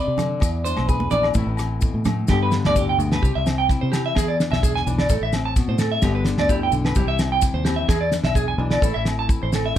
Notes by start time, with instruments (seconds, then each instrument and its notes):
Already playing: nylon-string guitar C3 C4, clean electric guitar D5
0.08 fingered electric bass C3
0.17 nylon-string guitar D3, cross-stick, closed hi-hat, low conga, low agogo, maracas
0.40 nylon-string guitar E2, fingered electric bass E2, kick, cross-stick, low agogo, maracas
0.65 nylon-string guitar D4, clean electric guitar C5, closed hi-hat, maracas
0.77 fingered electric bass B1, cross-stick, high conga, low agogo
0.87 nylon-string guitar G#4, clean electric guitar B4, kick, maracas
1.00 high conga
1.11 fingered electric bass A#1, nylon-string guitar E3 D4, clean electric guitar D5, closed hi-hat, low conga, maracas
1.23 cross-stick, low agogo
1.34 fingered electric bass A1, nylon-string guitar A2 E3 A3 C4 E4, kick, high conga, maracas
1.47 fingered electric bass A1
1.57 nylon-string guitar C4, cross-stick, closed hi-hat, low agogo, maracas
1.81 nylon-string guitar B2, kick, maracas
1.94 fingered electric bass A2
2.05 nylon-string guitar A2, cross-stick, closed hi-hat, high conga, low conga, low agogo, maracas
2.28 fingered electric bass G2, nylon-string guitar G2 D3 B3 D4, clean electric guitar G4, kick, snare, low agogo, maracas
2.32 nylon-string guitar G4
2.43 clean electric guitar B4
2.52 nylon-string guitar D4, snare, maracas
2.64 fingered electric bass D2, clean electric guitar D5, snare, low agogo
2.76 nylon-string guitar A2, clean electric guitar G4, kick, maracas
2.89 clean electric guitar G5
2.98 fingered electric bass D2, nylon-string guitar B2, maracas
3.12 clean electric guitar B4, snare, low agogo
3.22 fingered electric bass C2, nylon-string guitar C3, clean electric guitar G4, kick, maracas
3.35 fingered electric bass C2, clean electric guitar E5
3.46 nylon-string guitar C4, snare, low agogo, maracas
3.58 clean electric guitar G5
3.69 nylon-string guitar E4, kick, snare, maracas
3.81 fingered electric bass C3, clean electric guitar C5
3.92 nylon-string guitar E3 C4, clean electric guitar G4, snare, low agogo, maracas
4.06 clean electric guitar E5
4.15 fingered electric bass E2, nylon-string guitar E2, clean electric guitar G#4, kick, snare, low agogo, maracas
4.28 clean electric guitar D5
4.40 nylon-string guitar D4, snare, maracas
4.51 fingered electric bass B1, clean electric guitar E5, snare, low agogo
4.63 clean electric guitar G#4, kick, maracas
4.75 clean electric guitar G#5, snare
4.86 fingered electric bass B1, nylon-string guitar E3 D4, maracas
4.98 clean electric guitar D5, snare, low agogo
5.09 fingered electric bass A1, nylon-string guitar A2, clean electric guitar A4, kick, snare, maracas
5.21 fingered electric bass A1, clean electric guitar E5
5.33 nylon-string guitar C4, snare, low agogo, maracas
5.45 clean electric guitar A5
5.56 nylon-string guitar B2, kick, snare, maracas
5.68 fingered electric bass A2, clean electric guitar C5
5.78 nylon-string guitar A2, clean electric guitar A4, snare, low agogo, maracas
5.92 clean electric guitar E5
6.02 fingered electric bass G1, nylon-string guitar G2 D3 B3 D4 G4, clean electric guitar G4, kick, snare, low agogo, maracas
6.15 clean electric guitar B4
6.25 nylon-string guitar D4, snare, maracas
6.38 fingered electric bass D2, clean electric guitar D5, snare, low agogo
6.49 nylon-string guitar E4, clean electric guitar G4, kick, maracas
6.63 clean electric guitar G5
6.71 fingered electric bass B1, nylon-string guitar D3 D4, maracas
6.85 clean electric guitar B4, snare, low agogo
6.95 fingered electric bass C2, nylon-string guitar C3 E3 G3 E4, clean electric guitar G4, muted nylon-string guitar stroke, kick, maracas
7.06 fingered electric bass C2, clean electric guitar E5
7.19 nylon-string guitar C4, snare, low agogo, maracas
7.32 clean electric guitar G5
7.42 nylon-string guitar E4, kick, snare, maracas
7.54 fingered electric bass D#2, clean electric guitar C5
7.65 nylon-string guitar E3 C4, clean electric guitar G4, snare, low agogo, maracas
7.76 clean electric guitar E5
7.88 fingered electric bass E2, nylon-string guitar E2, clean electric guitar G#4, kick, snare, low agogo, maracas
8.01 clean electric guitar D5
8.12 nylon-string guitar D4, snare, maracas
8.23 fingered electric bass B1, clean electric guitar E5, snare, low agogo
8.35 clean electric guitar G#4, nylon-string guitar G#4, kick, maracas
8.48 clean electric guitar G#5
8.58 fingered electric bass B1, nylon-string guitar E3 D4
8.71 clean electric guitar D5, snare, low agogo
8.82 fingered electric bass A1, nylon-string guitar E3 A3 E4, clean electric guitar A4, muted nylon-string guitar stroke, kick, maracas
8.94 fingered electric bass A1, clean electric guitar E5
9.05 nylon-string guitar C4, snare, low agogo, maracas
9.19 clean electric guitar A5
9.29 nylon-string guitar E4, kick, maracas
9.43 fingered electric bass A1, clean electric guitar C5
9.53 nylon-string guitar E3 C4, clean electric guitar A4, snare, low agogo, maracas
9.66 clean electric guitar E5